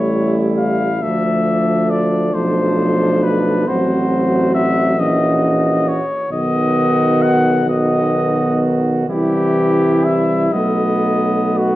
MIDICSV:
0, 0, Header, 1, 6, 480
1, 0, Start_track
1, 0, Tempo, 881057
1, 560, Time_signature, 6, 3, 24, 8
1, 2952, Tempo, 899550
1, 3912, Tempo, 938967
1, 5352, Tempo, 1030928
1, 6154, End_track
2, 0, Start_track
2, 0, Title_t, "Cornet"
2, 0, Program_c, 0, 56
2, 0, Note_on_c, 0, 73, 55
2, 222, Note_off_c, 0, 73, 0
2, 314, Note_on_c, 0, 77, 57
2, 557, Note_on_c, 0, 76, 60
2, 565, Note_off_c, 0, 77, 0
2, 1034, Note_on_c, 0, 74, 58
2, 1043, Note_off_c, 0, 76, 0
2, 1275, Note_on_c, 0, 72, 60
2, 1284, Note_off_c, 0, 74, 0
2, 1759, Note_on_c, 0, 71, 66
2, 1767, Note_off_c, 0, 72, 0
2, 2001, Note_on_c, 0, 72, 57
2, 2010, Note_off_c, 0, 71, 0
2, 2472, Note_off_c, 0, 72, 0
2, 2476, Note_on_c, 0, 76, 77
2, 2719, Note_on_c, 0, 75, 64
2, 2728, Note_off_c, 0, 76, 0
2, 3197, Note_on_c, 0, 73, 61
2, 3205, Note_off_c, 0, 75, 0
2, 3429, Note_off_c, 0, 73, 0
2, 3432, Note_on_c, 0, 75, 77
2, 3914, Note_on_c, 0, 78, 76
2, 3921, Note_off_c, 0, 75, 0
2, 4149, Note_off_c, 0, 78, 0
2, 4157, Note_on_c, 0, 75, 64
2, 4625, Note_off_c, 0, 75, 0
2, 4867, Note_on_c, 0, 67, 69
2, 5354, Note_on_c, 0, 76, 64
2, 5361, Note_off_c, 0, 67, 0
2, 5579, Note_on_c, 0, 75, 70
2, 5586, Note_off_c, 0, 76, 0
2, 6068, Note_on_c, 0, 66, 57
2, 6075, Note_off_c, 0, 75, 0
2, 6154, Note_off_c, 0, 66, 0
2, 6154, End_track
3, 0, Start_track
3, 0, Title_t, "Flugelhorn"
3, 0, Program_c, 1, 56
3, 0, Note_on_c, 1, 64, 44
3, 534, Note_off_c, 1, 64, 0
3, 557, Note_on_c, 1, 62, 46
3, 1259, Note_off_c, 1, 62, 0
3, 1277, Note_on_c, 1, 62, 47
3, 2003, Note_on_c, 1, 66, 47
3, 2011, Note_off_c, 1, 62, 0
3, 2713, Note_off_c, 1, 66, 0
3, 2719, Note_on_c, 1, 66, 52
3, 3279, Note_off_c, 1, 66, 0
3, 3430, Note_on_c, 1, 66, 55
3, 4129, Note_off_c, 1, 66, 0
3, 4155, Note_on_c, 1, 66, 52
3, 4859, Note_off_c, 1, 66, 0
3, 4869, Note_on_c, 1, 64, 57
3, 5580, Note_on_c, 1, 59, 47
3, 5587, Note_off_c, 1, 64, 0
3, 6154, Note_off_c, 1, 59, 0
3, 6154, End_track
4, 0, Start_track
4, 0, Title_t, "Euphonium"
4, 0, Program_c, 2, 58
4, 0, Note_on_c, 2, 57, 44
4, 535, Note_off_c, 2, 57, 0
4, 563, Note_on_c, 2, 57, 49
4, 1263, Note_off_c, 2, 57, 0
4, 1273, Note_on_c, 2, 57, 43
4, 2003, Note_on_c, 2, 60, 47
4, 2011, Note_off_c, 2, 57, 0
4, 2705, Note_on_c, 2, 61, 44
4, 2713, Note_off_c, 2, 60, 0
4, 3283, Note_off_c, 2, 61, 0
4, 3426, Note_on_c, 2, 59, 56
4, 4127, Note_off_c, 2, 59, 0
4, 4147, Note_on_c, 2, 59, 51
4, 4855, Note_off_c, 2, 59, 0
4, 4866, Note_on_c, 2, 55, 55
4, 5590, Note_on_c, 2, 57, 46
4, 5597, Note_off_c, 2, 55, 0
4, 6154, Note_off_c, 2, 57, 0
4, 6154, End_track
5, 0, Start_track
5, 0, Title_t, "Trombone"
5, 0, Program_c, 3, 57
5, 0, Note_on_c, 3, 55, 45
5, 536, Note_off_c, 3, 55, 0
5, 564, Note_on_c, 3, 53, 43
5, 1263, Note_off_c, 3, 53, 0
5, 1274, Note_on_c, 3, 53, 53
5, 1987, Note_off_c, 3, 53, 0
5, 2004, Note_on_c, 3, 54, 52
5, 2713, Note_on_c, 3, 52, 56
5, 2721, Note_off_c, 3, 54, 0
5, 3287, Note_off_c, 3, 52, 0
5, 3424, Note_on_c, 3, 51, 62
5, 4126, Note_off_c, 3, 51, 0
5, 4141, Note_on_c, 3, 51, 53
5, 4853, Note_off_c, 3, 51, 0
5, 4865, Note_on_c, 3, 52, 55
5, 5563, Note_off_c, 3, 52, 0
5, 5573, Note_on_c, 3, 54, 48
5, 6154, Note_off_c, 3, 54, 0
5, 6154, End_track
6, 0, Start_track
6, 0, Title_t, "Tuba"
6, 0, Program_c, 4, 58
6, 0, Note_on_c, 4, 33, 43
6, 557, Note_on_c, 4, 38, 47
6, 565, Note_off_c, 4, 33, 0
6, 1274, Note_off_c, 4, 38, 0
6, 1280, Note_on_c, 4, 35, 52
6, 1990, Note_off_c, 4, 35, 0
6, 2005, Note_on_c, 4, 33, 56
6, 2713, Note_on_c, 4, 34, 56
6, 2721, Note_off_c, 4, 33, 0
6, 3286, Note_off_c, 4, 34, 0
6, 3429, Note_on_c, 4, 35, 51
6, 4850, Note_off_c, 4, 35, 0
6, 4865, Note_on_c, 4, 36, 54
6, 5563, Note_off_c, 4, 36, 0
6, 5581, Note_on_c, 4, 35, 47
6, 6154, Note_off_c, 4, 35, 0
6, 6154, End_track
0, 0, End_of_file